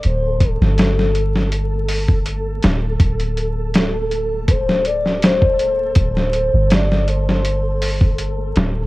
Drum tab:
HH |x-x-x-x-x-o-x-x-|xxx-x-x-x-x-x-x-|x-x-x-x-x-o-x-x-|
SD |---ooo-o------o-|----o----o-oo---|-o--oo-o------o-|
BD |--o--------o----|o-------o----o--|o----------o----|